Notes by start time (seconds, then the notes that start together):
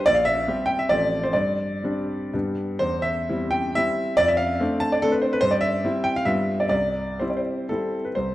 0.06 A#1 D5
0.14 F5
0.25 E5
0.48 G3 C4 G4
0.66 G5
0.79 E5
0.89 A1 F3 C4 A4 D5
1.24 C5
1.33 G2 D5
1.84 G3 C4 D4
2.34 G2 G3 B3 D4
2.79 E2 C5
3.02 E5
3.29 G3 C4 E4
3.51 G5
3.75 G3 C4 E4 E5
4.17 F2 D5
4.28 E5
4.37 F5
4.60 A3 C4 D4
4.80 A5
4.92 D5
5.02 A3 C4 D4 A4
5.12 B4
5.22 C5
5.33 B4
5.41 G2 C5
5.51 D5
5.61 E5
5.85 G3 C4 E4
6.04 G5
6.16 F5
6.25 G2 G3 B3 F4 E5
6.60 D5
6.69 C2 D5
7.20 G3 C4 E4 C5
7.30 D5
7.37 C5
7.69 G3 C4 E4 A4
8.05 B4
8.15 C2 C5